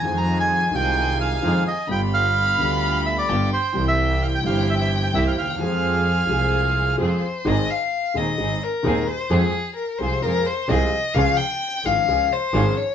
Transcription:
X:1
M:4/4
L:1/16
Q:1/4=130
K:Fm
V:1 name="Bandoneon"
a b2 a3 g4 f4 e2 | g2 f8 =e =d3 c2- | c =e3 f g f2 e e2 g e f f2- | f12 z4 |
[K:Ab] z16 | z16 | z16 |]
V:2 name="Violin"
a16 | =b12 g4 | g16 | a12 c4 |
[K:Ab] e2 f4 e4 B4 c2 | A4 B2 c2 B2 c2 e4 | f2 g4 f4 c4 d2 |]
V:3 name="String section"
[EFA]6 [EFA]6 [EFA]2 z2 | [=B,FG]6 [B,FG]6 [B,FG]2 z2 | [C=EG]6 [CEG]6 [CEG]2 z2 | [CFA]6 [CFA]6 [CFA]2 z2 |
[K:Ab] [CEA]2 z4 [CEA]2 [CEA]2 z2 [CEA]2 z2 | [CFA]2 z4 [CFA]2 [CFA]2 z2 [CFA]2 z2 | [DFA]2 z4 [DFA]2 [DFA]2 z2 [DFA]2 z2 |]
V:4 name="Grand piano" clef=bass
[F,,E,F,A,CF]6 [C,,C,E,A,CF]6 [F,,E,F,A,CF]2 z2 | [G,,,G,,=D,G,=B,F]6 [=D,,D,G,B,F]6 [G,,,G,,D,G,B,F]2 z2 | [C,,C,=E,G,CG]6 [G,,,G,,E,G,CG]6 [C,,C,E,G,CG]2 z/2 =D,,/2 _E,,/2 =E,,/2 | [F,,F,A,CA]6 [C,,C,F,A,CA]6 [F,,F,A,CA]2 z2 |
[K:Ab] [A,,,A,,E,A,CA]2 z4 [E,,,E,,E,A,CA]2 [A,,,A,,E,A,CA]2 z2 [E,,,E,,E,A,CA]2 z2 | [F,,F,A,CA]2 z4 [C,,C,F,A,CA]2 [F,,F,A,CA]2 z2 [C,,C,F,A,CA]2 z2 | [D,,D,F,A,DA]2 z4 [A,,,A,,F,A,DA]2 [D,,D,F,A,DA]2 z2 [A,,,A,,F,A,DA]2 z2 |]
V:5 name="Double bass" clef=bass
F,,6 C,,6 F,,2 z2 | G,,,6 =D,,6 G,,,2 z2 | C,,6 G,,,6 C,,2 E,,2 | F,,6 C,,6 F,,2 z2 |
[K:Ab] A,,,2 z4 E,,2 A,,,2 z2 E,,2 z2 | F,,2 z4 C,,2 F,,2 z2 C,,2 z2 | D,,2 z4 A,,,2 D,,2 z2 A,,,2 z2 |]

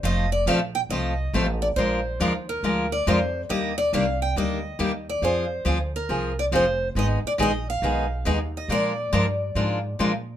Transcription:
X:1
M:4/4
L:1/16
Q:"Swing" 1/4=139
K:Fdor
V:1 name="Steel-string acoustic guitar"
e2 d2 f2 g2 e6 d2 | c6 B4 d2 c3 z | e2 d2 f2 g2 e6 d2 | c6 B4 d2 c3 z |
e2 d2 e2 f8 e2 | d12 z4 |]
V:2 name="Steel-string acoustic guitar"
[F,=A,CF=A]2 z2 [F,A,CFA]2 z2 [F,A,CFA]2 z2 [F,A,CFA]2 z2 | [F,A,DFB]2 z2 [F,A,DFB]2 z2 [F,A,DFB]2 z2 [F,A,DFB]2 z2 | [E,G,B,DG]2 z2 [E,G,B,DG]2 z2 [E,G,B,DG]2 z2 [E,G,B,DG]2 z2 | [F,CFA]2 z2 [F,CFA]2 z2 [F,CFA]2 z2 [F,CFA]2 z2 |
[E,A,_CEA]2 z2 [E,A,CEA]2 z2 [E,A,CEA]2 z2 [E,A,CEA]2 z2 | [F,A,DFB]2 z2 [F,A,DFB]2 z2 [F,A,DFB]2 z2 [F,A,DFB]2 z2 |]
V:3 name="Upright bass" clef=bass
F,,,4 B,,,4 C,,4 =A,,,4 | B,,,4 E,,4 D,,4 F,,4 | E,,4 C,,4 D,,4 E,,4 | F,,4 D,,4 C,,4 F,,,4 |
A,,,2 z2 B,,,4 _C,,4 E,,4 | B,,4 G,,4 A,,4 B,,4 |]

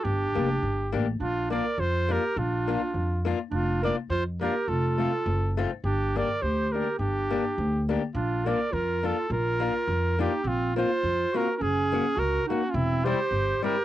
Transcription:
X:1
M:2/4
L:1/16
Q:"Swing" 1/4=104
K:Gm
V:1 name="Trumpet"
G6 z2 | [K:Bb] F2 d2 c2 B2 | F6 z2 | F2 d2 c2 B2 |
A6 z2 | G2 d2 c2 B2 | G6 z2 | F2 d2 B2 A2 |
B6 G2 | [K:Bbm] F2 c4 B3/2 B/2 | A4 B2 G3/2 F/2 | =E2 c4 B2 |]
V:2 name="Clarinet"
D6 z2 | [K:Bb] D2 B2 F2 G2 | D6 z2 | D2 B2 F2 G2 |
F6 z2 | D2 B2 G2 G2 | D6 z2 | D2 B2 F2 F2 |
F6 E2 | [K:Bbm] C2 F4 G3/2 G/2 | D4 G2 E3/2 D/2 | C2 =G4 G2 |]
V:3 name="Steel-string acoustic guitar"
z2 [B,DG]2 z2 [B,DG]2 | [K:Bb] z2 [B,DF]2 z2 [B,DF]2 | z2 [B,DF]2 z2 [B,DF]2 | z2 [B,DF]2 z2 [B,DF]2 |
z2 [A,CF]2 z2 [A,CF]2 | z2 [B,DG]2 z2 [B,DG]2 | z2 [B,DG]2 z2 [B,DG]2 | z2 [B,DF]2 z2 [B,DF]2 |
z2 [B,DF]2 z2 [B,DF]2 | [K:Bbm] z2 [B,CF]2 z2 [B,CF]2 | z2 [B,DG]2 z2 [B,DG]2 | z2 [=G,C=E]2 z2 [G,CE]2 |]
V:4 name="Upright bass" clef=bass
G,,,2 F,,,2 G,,,2 A,,,2 | [K:Bb] B,,,4 F,,4 | B,,,4 F,,4 | F,,,4 F,,4 |
F,,,4 _G,,,4 | G,,,4 D,,4 | G,,,4 D,,4 | B,,,4 F,,4 |
B,,,4 F,,4 | [K:Bbm] B,,,4 F,,2 z2 | G,,,4 D,,2 z2 | =E,,,4 =G,,,2 z2 |]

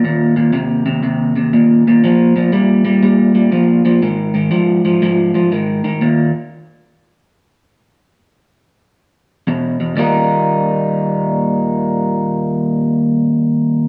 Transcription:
X:1
M:4/4
L:1/8
Q:"Swing" 1/4=121
K:Eb
V:1 name="Clean electric guitar" clef=bass
[E,,B,,] [E,,B,,] [E,,C,] [E,,C,] [E,,C,] [E,,C,] [E,,B,,] [E,,B,,] | [B,,F,] [B,,F,] [B,,G,] [B,,G,] [B,,G,] [B,,G,] [B,,F,] [B,,F,] | [A,,E,] [A,,E,] [A,,F,] [A,,F,] [A,,F,] [A,,F,] [A,,E,] [A,,E,] | [E,,B,,] z6 z |
z6 [=E,,=B,,] [E,,B,,] | [E,,B,,E,G,B,E]8- | [E,,B,,E,G,B,E]8 |]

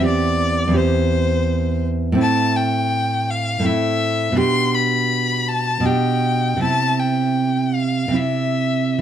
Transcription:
X:1
M:3/4
L:1/8
Q:1/4=82
K:C
V:1 name="Violin"
d2 c3 z | [K:Am] a g2 f e2 | c' b2 a g2 | a g2 f e2 |]
V:2 name="Nylon-string guitar"
[E,,CG]2 [E,,CG]4 | [K:Am] [A,,CE]4 [A,,CE]2 | [B,,DG]4 [B,,DG]2 | [C,CE]4 [C,CE]2 |]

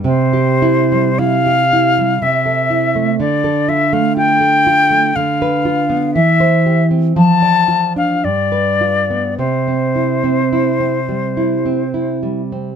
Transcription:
X:1
M:3/4
L:1/16
Q:1/4=57
K:C
V:1 name="Flute"
c4 f4 e4 | d2 e f g4 f4 | e3 z a3 f d4 | c8- c2 z2 |]
V:2 name="Nylon-string guitar"
C, G E G, E G E G, C, A E A, | D, A F A, F A F A, D, B F B, | E, c G C F, d F D G,, B F B, | C, C E C E C G, E C E G, C |]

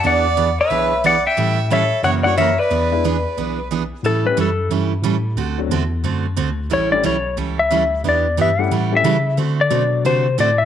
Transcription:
X:1
M:4/4
L:1/16
Q:"Swing" 1/4=180
K:Amix
V:1 name="Electric slide guitar"
[df]6 [ce]6 [df]2 [eg]2- | [eg]4 [ce]4 [cf]2 [df]2 [ce]2 [Bd]2- | [Bd]12 z4 | A2 B2 A4 z8 |
z16 | c2 d2 c4 z2 e6 | d4 e2 f4 e6 | z2 d6 =c4 d2 e2 |]
V:2 name="Fiddle"
d6 B6 d2 e2- | e4 A4 c2 c2 ^A2 B2- | B12 z4 | z16 |
z16 | z16 | z16 | z16 |]
V:3 name="Steel-string acoustic guitar"
[E,B,D^G]2 z2 [E,B,DG] z3 [E,B,DG]2 z2 [E,B,DG] z3 | [E,G,CEA]2 z2 [E,G,CEA] z3 [C,E,^A,CF]2 z2 [C,E,A,CF] z3 | [E,B,D^G]2 z2 [E,B,DG] z3 [E,B,DG]2 z2 [E,B,DG] z3 | [E,G,CEA]2 z2 [E,G,CEA] z3 [E,G,CEA]2 z2 [E,G,CEA] z3 |
[D,A,=CFA]2 z2 [D,A,CFA] z3 [D,A,CFA]2 z2 [D,A,CFA] z3 | [E,G,CEA]2 z2 [E,G,CEA] z3 [E,G,CEA]2 z2 [E,G,CEA] z3 | [E,B,DG]2 z2 [E,B,DG] z3 [E,G,CEA]2 z2 [E,G,CEA] z3 | [D,A,=CFA]2 z2 [D,A,CFA] z3 [D,A,CFA]2 z2 [D,A,CFA] z3 |]
V:4 name="Upright piano"
z16 | z8 z2 [G,^A,EF]2 z4 | z2 [^G,B,DE]2 z12 | z2 [G,A,CEG]2 z12 |
z2 [F,A,=CDF]2 z12 | z2 [G,A,CEG]2 z12 | z6 [G,A,CEG]2 z2 [G,A,CEG]2 z4 | z4 [F,A,DF=c]6 z6 |]
V:5 name="Tine electric piano" clef=bass
E,,8 B,,,8 | A,,8 F,,8 | E,,8 B,,,8 | A,,2 A,,2 F,,4 G,,4 A,,4 |
D,,4 E,,4 F,,4 D,,4 | A,,,4 B,,,4 C,,4 D,,4 | E,,4 G,,4 A,,4 C,4 | D,4 B,,4 =C,4 A,,4 |]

